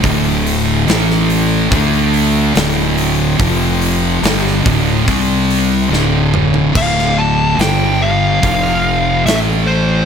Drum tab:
CC |----------------|----------------|x---------------|
HH |o-o-o-o-o-o-o-o-|o-o-o-o-o-o-----|----o---o---o---|
SD |----oo------o---|----oo------o---|-o--o-------o---|
T2 |----------------|--------------o-|----------------|
FT |----------------|---------------o|----------------|
BD |o-------o-------|o-----o-o-------|o-------o-------|